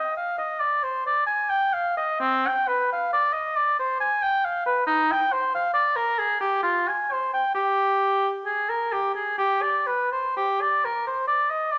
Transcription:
Already playing: D#5
0.17 F5
0.38 D#5
0.60 D5
0.83 C5
1.06 D5
1.26 G#5
1.50 G5
1.74 F5
1.97 D#5
2.20 C4
2.47 G5
2.68 B4
2.92 F5
3.13 D5
3.33 D#5
3.57 D5
3.79 C5
4.00 G#5
4.22 G5
4.45 F5
4.66 B4
4.86 D#4
5.11 G5
5.32 C5
5.55 F5
5.74 D5
5.96 A#4
6.18 G#4
6.41 G4
6.63 F4
6.88 G#5
7.12 C5
7.33 G5
7.54 G4
8.45 G#4
8.69 A#4
8.92 G4
9.14 G#4
9.38 G4
9.62 D5
9.87 B4
10.12 C5
10.37 G4
10.61 D5
10.85 A#4
11.07 C5
11.27 D5
11.50 D#5
11.72 D5

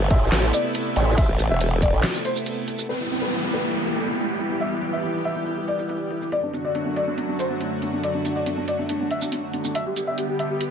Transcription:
Already playing: C3 A3 B3 E4
0.00 A4
0.11 A1 E5, kick, closed hi-hat
0.21 A4
0.32 A1 A4, snare, clap, closed hi-hat, crash
0.43 A4
0.53 D5, closed hi-hat, shaker
0.64 A4
0.75 A4, closed hi-hat, crash
0.96 A1 A4, closed hi-hat
1.07 A4
1.18 E5, kick, closed hi-hat, crash
1.29 A1 A4
1.39 A4, closed hi-hat, shaker
1.50 E1 E5
1.61 A4, closed hi-hat, crash
1.72 A4
1.82 D5, kick, closed hi-hat
1.93 A1 A4
2.03 snare, clap, closed hi-hat, crash
2.14 A4, shaker
2.25 C5, closed hi-hat
2.36 A4, shaker
2.46 A4, closed hi-hat, crash
2.68 A4, closed hi-hat
2.79 A4, shaker
2.89 E3 G3 B3 G4 B4, downlifter
3.00 E4
3.11 E4
3.22 B4
3.32 E4
3.43 E4
3.54 B4
3.64 E4
3.75 E4
3.86 E4
3.96 A4
4.07 E4
4.18 E4
4.39 E4
4.50 E4
4.61 E5, closed hi-hat
4.71 E4
4.82 E4, closed hi-hat, shaker
4.93 E5
5.03 E4, closed hi-hat
5.14 E4
5.25 E5, closed hi-hat
5.36 E4
5.46 E4, closed hi-hat
5.57 E4
5.68 D5, closed hi-hat
5.79 E4, shaker
5.89 E4, closed hi-hat
6.11 E4, closed hi-hat
6.22 E4, shaker
6.32 F#2 D3 F#3 A3 F#4 D5, closed hi-hat
6.43 D4
6.54 D4, closed hi-hat, shaker
6.65 D5
6.75 D4, closed hi-hat
6.86 D4
6.96 D5, closed hi-hat
7.07 D4
7.18 D4, closed hi-hat
7.29 D4
7.39 C5, closed hi-hat, shaker
7.50 D4
7.61 D4, closed hi-hat
7.82 D4, closed hi-hat
7.93 D4
8.03 D5, closed hi-hat
8.14 D4
8.25 D4, closed hi-hat, shaker
8.36 D5
8.46 D4, closed hi-hat
8.57 D4
8.68 D5, closed hi-hat
8.79 D4
8.89 D4, closed hi-hat
9.00 D4
9.11 E5, closed hi-hat
9.22 D4, shaker
9.32 D4, closed hi-hat
9.53 D4, closed hi-hat
9.64 D4, shaker
9.75 G3 B3 G4 E5, closed hi-hat
9.86 G4
9.96 G4, closed hi-hat, shaker
10.07 E5
10.18 G4, closed hi-hat
10.29 G4
10.39 E5, closed hi-hat
10.50 G4
10.61 G4, closed hi-hat

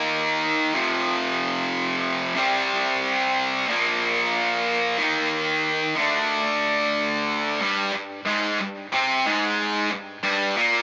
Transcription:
Already playing: D#3 A#3 D#4
0.73 F2 C3 F3
2.36 C3 G3 C4
3.68 A#2 F3 A#3
4.98 D#3 A#3 D#4
5.96 D3 A3 D4
7.61 G2 G3
7.93 G2
8.26 G#2 G#3
8.60 G2
8.92 C3 C4
9.26 G#2 G#3
9.91 G2
10.23 G2 G3
10.56 A#2 A#3

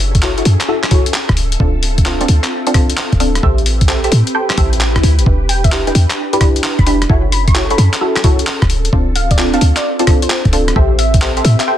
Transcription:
Already playing: F#1 C#4 G#4 A4 E5
0.00 open hi-hat
0.15 kick, closed hi-hat
0.22 E4 F#4 A4 C#5, clap
0.38 E4 F#4 A4 C#5, closed hi-hat
0.45 F#2, open hi-hat
0.61 clap, closed hi-hat
0.68 E4 F#4 A4 E5
0.83 cross-stick, clap, closed hi-hat
0.91 E4 F#4 A4 C#5, kick, open hi-hat
1.06 closed hi-hat
1.14 clap
1.29 D1, kick, cross-stick, closed hi-hat
1.37 C4 F4, open hi-hat
1.52 closed hi-hat
1.60 D1 C4 D4 F4 A4, kick
1.83 open hi-hat
1.98 kick, closed hi-hat
2.06 C4 D4 F4 A4, clap
2.21 C4 D4 F4 A4, closed hi-hat
2.28 D2, open hi-hat
2.44 clap, closed hi-hat
2.67 C4 D4 F4 A4, closed hi-hat
2.74 C4 D4 F4 A4, kick, cross-stick, open hi-hat
2.90 closed hi-hat
2.97 clap
3.12 D1, kick, closed hi-hat
3.20 C4 D4 F4 A4, open hi-hat
3.35 cross-stick, closed hi-hat
3.43 A1 C4 G4 A4 B4 C5 E5, kick
3.58 closed hi-hat
3.66 open hi-hat
3.81 kick, closed hi-hat
3.89 G4 A4 C5 E5, clap
4.04 G4 A4 C5 E5, closed hi-hat
4.12 A2, open hi-hat
4.27 closed hi-hat
4.35 G4 A4 C5 G5, swell
4.50 cross-stick, clap, closed hi-hat
4.58 A1 G4 A4 C5 E5, kick, open hi-hat
4.73 closed hi-hat
4.81 clap
4.96 kick, cross-stick, closed hi-hat
5.03 D2, open hi-hat
5.19 G1, closed hi-hat
5.26 E1 D4 E4 G4 B4, kick
5.49 G5, open hi-hat
5.64 E5, kick, closed hi-hat
5.72 D4 E4 G4 B4, clap
5.87 D4 E4 G4 B4 G5, closed hi-hat
5.95 E2, open hi-hat
6.10 clap, closed hi-hat
6.33 D4 E4 G4 B4, closed hi-hat
6.41 D4 E4 G4 B4, kick, cross-stick, open hi-hat
6.56 closed hi-hat
6.64 clap
6.79 E1 B5, kick, closed hi-hat
6.86 D4 E4 G4 B4 B5, open hi-hat
7.02 cross-stick, closed hi-hat
7.09 F#1 C#4 E4 F#4 G#4 A4 C#5, kick
7.32 B5, open hi-hat
7.48 C#6, kick, closed hi-hat
7.55 E4 F#4 A4 C#5, clap
7.70 E4 F#4 A4 C#5 B5, closed hi-hat
7.78 F#2 B5, open hi-hat
7.93 clap, closed hi-hat
8.01 E4 F#4 A4 E5
8.16 cross-stick, clap, closed hi-hat
8.24 E4 F#4 A4 C#5, kick, open hi-hat
8.39 closed hi-hat
8.47 clap
8.62 D1, kick, cross-stick, closed hi-hat
8.70 C4 F4, open hi-hat
8.85 closed hi-hat
8.93 D1 C4 D4 F4 A4, kick
9.16 F5, open hi-hat
9.31 D5, kick, closed hi-hat
9.38 C4 D4 F4 A4, clap
9.54 C4 D4 F4 A4 F5, closed hi-hat
9.61 D2, open hi-hat
9.76 D5, clap, closed hi-hat
9.99 C4 D4 F4 A4, closed hi-hat
10.07 C4 D4 F4 A4, kick, cross-stick, open hi-hat
10.22 C5, closed hi-hat
10.30 C5, clap
10.45 D1, kick, closed hi-hat
10.53 C4 D4 F4 A4, open hi-hat
10.68 cross-stick, closed hi-hat
10.76 A1 G4 A4 B4 C5 E5, kick
10.99 E5, open hi-hat
11.14 kick, closed hi-hat
11.22 G4 A4 C5 E5, clap
11.37 G4 A4 C5 E5, closed hi-hat
11.45 A2 E5, open hi-hat
11.60 E5, clap, closed hi-hat
11.67 G4 A4 C5 E5 G5

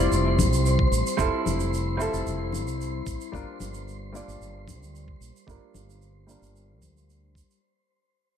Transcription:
Already playing: G3 C4 E4 F4 C5 D5 C6
0.11 F1, shaker
0.39 kick, high conga, shaker
0.52 C2, shaker
0.66 shaker
0.79 kick
0.92 A1, shaker
1.07 shaker
1.17 F1 G3 C4 E4 F4 A4, kick, shaker
1.46 F1, high conga, shaker
1.60 shaker
1.74 shaker
1.97 G3 C4 E4 F4, shaker
2.01 A4
2.13 F1, shaker
2.26 F1, shaker
2.52 high conga, shaker
2.66 C2, shaker
2.81 shaker
3.06 A1, kick, shaker
3.21 shaker
3.32 G1 G3 A#3 D4 F4 A#4, kick, shaker
3.60 G1, high conga, shaker
3.74 shaker
3.88 shaker
4.12 G3 A#3 D4 F4 D5, shaker
4.28 G1, shaker
4.40 G1, shaker
4.68 kick, high conga, shaker
4.81 D2, shaker
4.95 shaker
5.08 kick
5.20 A#1, shaker
5.36 shaker
5.47 G1 G3 A#3 D4 F4 A#4, kick, shaker
5.74 G1, high conga, shaker
5.90 shaker
6.02 shaker
6.27 G3 A#3 D4 F4 A#4, shaker
6.42 G1, shaker
6.56 shaker
6.82 D2, kick, high conga, shaker
6.97 shaker
7.10 shaker
7.35 kick, shaker
7.51 shaker

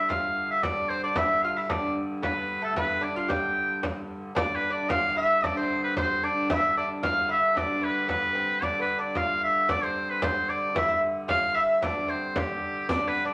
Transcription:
Already playing: E5
0.08 G2 D3 F4 F5, frame drum
0.51 E5
0.63 D4 D5, frame drum
0.89 C4 C5
1.03 D4 D5
1.16 E4 E5, frame drum
1.43 F4 F5
1.57 E4 E5
1.69 D4 D5, frame drum
2.22 B3 B4, frame drum
2.62 A3 A4
2.76 B3 B4, frame drum
3.01 D4 D5
3.16 F4 F5
3.28 G4 G5, frame drum
3.83 frame drum
4.35 G2 D3 D4 D5, frame drum
4.56 B4
4.70 D4 D5
4.89 F4 F5, frame drum
5.09 F4
5.17 E4 E5
5.44 D4 D5, frame drum
5.57 C4 C5
5.84 B4
5.97 C4 C5, frame drum
6.23 D4 D5
6.50 E4 E5, frame drum
6.77 D4 D5
7.03 F4 F5, frame drum
7.29 E4 E5
7.55 D4 D5, frame drum
7.82 B3 B4
8.08 B3 B4, frame drum
8.35 C4
8.62 G2 D3 D4 D5, frame drum
8.80 B3 B4
8.99 D4 D5
9.15 F4 F5, frame drum
9.43 E5
9.69 D4 D5, frame drum
9.83 C4 C5
10.10 B4
10.22 C4 C5, frame drum
10.50 D4 D5
10.75 E4 E5, frame drum
10.82 E4
10.88 E4
11.28 F4 F5, frame drum
11.55 E4 E5
11.82 D4 D5, frame drum
12.08 C4 C5
12.36 G3 G4, frame drum
12.89 G2 D3 D4 D5, riq, frame drum
13.07 B3 B4
13.25 D4 D5

